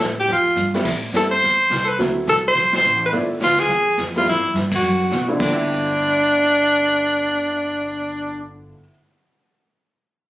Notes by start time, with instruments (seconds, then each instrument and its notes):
0.00 upright bass A2, hi-hat pedal
0.19 alto saxophone G4
0.28 upright bass F2, brush sweep, kick, snare
0.32 alto saxophone F4
0.56 upright bass G2, hi-hat pedal
0.74 upright piano G3 A3 B3 C4 E4, snare
0.85 upright bass A2, brush sweep, kick, snare, crash
1.13 upright bass G2, upright piano G3 A3 B3 C4 E4, alto saxophone A4, kick, snare, hi-hat pedal
1.31 alto saxophone C5
1.42 upright bass E2, brush sweep, kick, snare
1.70 upright bass C2, kick, snare, hi-hat pedal
1.85 alto saxophone A4 B4
1.99 upright bass D2, upright piano F#3 A3 B3 C4 E4, brush sweep, kick, snare
2.27 upright bass C2, alto saxophone A4, kick, snare, hi-hat pedal
2.48 alto saxophone C5
2.55 upright bass B1, brush sweep, kick, snare
2.73 alto saxophone C5, snare, ride
2.83 upright bass A1, hi-hat pedal
3.06 alto saxophone B4
3.12 upright bass G1, upright piano F3 A3 B3 D4 E4, brush sweep, kick, snare
3.40 upright bass D2, alto saxophone F4, kick, snare, hi-hat pedal
3.57 alto saxophone G#4, snare
3.69 upright bass E2, brush sweep, kick, snare
3.98 upright bass F2, kick, snare, hi-hat pedal
4.14 upright piano G3 A3 B3 C4 E4, alto saxophone F4, snare
4.26 upright bass A2, alto saxophone E4, brush sweep, kick, snare
4.36 upright bass G2
4.45 upright bass E2
4.54 upright bass G2, kick, snare, hi-hat pedal
4.72 alto saxophone F#4, kick, crash
4.83 upright bass F#2, brush sweep
5.11 upright bass B2, kick, snare, hi-hat pedal
5.28 upright piano G2 F3 A3 B3 D4 E4
5.33 upright piano D3
5.38 upright bass G1, upright piano F3, kick, crash
5.42 upright piano A3, alto saxophone D4
5.47 upright piano B3
5.53 upright piano E4